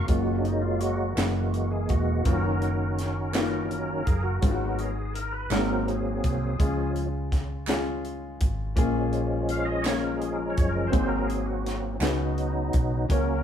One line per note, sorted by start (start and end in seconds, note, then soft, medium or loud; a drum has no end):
0.00 0.11 A3 medium
0.00 0.07 A#3 medium
0.00 0.08 C#4 medium
0.00 0.09 F#4 medium
0.00 0.10 F5 medium
0.07 1.13 F#1 medium
0.07 1.13 F#3 soft
0.07 1.13 G#3 soft
0.07 0.77 A#3 medium
0.07 1.13 A#3 medium
0.07 0.77 C#4 medium
0.07 0.78 F4 medium
0.07 0.41 F#4 medium
0.07 0.78 F#4 medium
0.07 kick medium
0.07 closed hi-hat medium
0.39 0.44 D4 soft
0.43 0.63 D#4 medium
0.43 closed hi-hat soft
0.61 0.81 F4 medium
0.80 1.51 F#4 medium
0.80 closed hi-hat medium
1.15 1.86 F#1 medium
1.15 2.21 E3 soft
1.15 2.22 G#3 soft
1.15 1.85 A#3 soft
1.15 2.22 A#3 medium
1.15 1.85 C#4 soft
1.15 1.86 E4 soft
1.15 1.86 F#4 medium
1.15 snare loud
1.15 clap loud
1.15 closed hi-hat medium
1.53 1.72 F#4 medium
1.53 closed hi-hat soft
1.71 1.90 G#4 medium
1.89 2.23 E1 medium
1.89 3.67 F#4 medium
1.89 kick medium
1.89 closed hi-hat medium
2.23 4.03 F#1 medium
2.23 3.68 D#3 medium
2.23 2.94 A#3 medium
2.23 2.94 B3 medium
2.23 3.70 C#4 medium
2.23 2.95 D#4 medium
2.23 2.33 F4 medium
2.23 4.39 A#4 medium
2.23 kick medium
2.23 closed hi-hat medium
2.33 2.98 F#4 medium
2.62 closed hi-hat soft
2.99 snare soft
2.99 closed hi-hat medium
3.32 4.02 A#3 medium
3.32 4.02 B3 medium
3.32 4.03 D#4 medium
3.32 4.03 F4 medium
3.32 snare medium
3.32 clap medium
3.32 closed hi-hat medium
3.69 4.03 D#3 soft
3.69 4.03 F#3 soft
3.69 4.03 C#4 soft
3.69 closed hi-hat soft
4.05 4.40 F#1 medium
4.05 4.14 G#4 medium
4.05 kick medium
4.05 closed hi-hat medium
4.16 4.24 G#4 medium
4.23 4.80 F#4 medium
4.41 5.48 G#1 medium
4.41 5.48 G#2 medium
4.41 4.91 F#3 medium
4.41 5.11 G#3 medium
4.41 5.12 B3 medium
4.41 4.91 B3 medium
4.41 5.12 D#4 medium
4.41 4.50 F4 medium
4.41 4.91 A#4 soft
4.41 kick loud
4.41 closed hi-hat medium
4.51 5.16 F#4 medium
4.79 5.13 G#4 medium
4.79 closed hi-hat soft
5.14 5.34 A#4 medium
5.14 closed hi-hat medium
5.33 5.52 B4 medium
5.50 6.20 G#1 medium
5.50 6.56 G#2 medium
5.50 6.56 F#3 medium
5.50 6.20 G#3 medium
5.50 6.56 A#3 soft
5.50 6.20 C4 medium
5.50 6.56 C4 medium
5.50 6.20 D#4 soft
5.50 6.21 F#4 medium
5.50 5.90 A#4 medium
5.50 snare medium
5.50 clap medium
5.50 closed hi-hat medium
5.88 6.93 G#4 medium
5.88 closed hi-hat soft
6.24 6.57 C2 medium
6.24 kick medium
6.24 closed hi-hat medium
6.59 8.37 C#2 medium
6.59 7.65 C#3 medium
6.59 7.08 F3 medium
6.59 7.08 G#3 soft
6.59 7.29 G#3 medium
6.59 7.08 C#4 medium
6.59 7.29 C#4 medium
6.59 7.29 F4 medium
6.59 7.30 G#4 medium
6.59 kick loud
6.59 closed hi-hat medium
6.96 closed hi-hat soft
7.32 kick medium
7.32 snare soft
7.32 closed hi-hat medium
7.67 8.37 G#3 medium
7.67 8.37 C#4 medium
7.67 8.38 F4 medium
7.67 8.38 G#4 medium
7.67 snare medium
7.67 clap medium
7.67 closed hi-hat medium
8.05 closed hi-hat soft
8.41 8.74 G#1 medium
8.41 kick medium
8.41 closed hi-hat medium
8.76 10.53 A#1 loud
8.76 9.82 A#2 medium
8.76 10.89 F3 medium
8.76 10.89 G#3 soft
8.76 9.45 A#3 medium
8.76 9.45 C#4 medium
8.76 10.90 C#4 medium
8.76 9.46 F4 medium
8.76 9.47 G#4 medium
8.76 kick loud
8.76 closed hi-hat medium
9.13 closed hi-hat soft
9.49 9.67 F5 medium
9.49 closed hi-hat medium
9.65 9.85 D#5 medium
9.82 10.53 A#3 medium
9.82 10.54 C#4 medium
9.82 10.54 F4 soft
9.82 10.03 C#5 loud
9.82 clap medium
9.82 closed hi-hat medium
9.86 10.55 A#4 medium
9.86 snare medium
9.99 10.20 A#4 medium
10.16 10.38 G#4 medium
10.22 closed hi-hat soft
10.33 10.55 A#4 medium
10.50 10.73 C#5 medium
10.58 10.91 F#1 medium
10.58 kick medium
10.58 closed hi-hat medium
10.69 10.89 A#4 medium
10.87 11.96 F#3 medium
10.87 11.96 A#3 medium
10.87 11.61 C4 medium
10.87 11.97 C4 medium
10.87 11.61 D#4 medium
10.87 11.09 C5 medium
10.92 11.98 G#1 loud
10.92 11.97 G#2 medium
10.92 11.62 F#4 medium
10.92 11.62 G#4 medium
10.92 kick medium
10.92 closed hi-hat medium
11.08 11.29 A#4 medium
11.25 11.46 G#4 medium
11.30 closed hi-hat soft
11.46 11.81 F#4 medium
11.66 snare soft
11.66 closed hi-hat medium
11.99 12.70 C#2 medium
11.99 13.06 C#3 medium
11.99 13.05 F#3 medium
11.99 13.05 B3 medium
11.99 12.70 C#4 medium
11.99 12.70 D#4 medium
11.99 13.06 D#4 medium
11.99 12.70 F#4 medium
11.99 12.71 B4 medium
11.99 snare medium
11.99 clap loud
11.99 closed hi-hat medium
12.38 closed hi-hat soft
12.73 13.07 B1 medium
12.73 kick medium
12.73 closed hi-hat medium
13.09 13.43 C#2 loud
13.09 13.43 C#3 medium
13.09 13.43 F#3 medium
13.09 13.43 A#3 medium
13.09 13.43 C#4 medium
13.09 13.43 F#4 medium
13.09 13.43 A#4 medium
13.09 13.43 C#5 medium
13.09 kick medium
13.09 closed hi-hat medium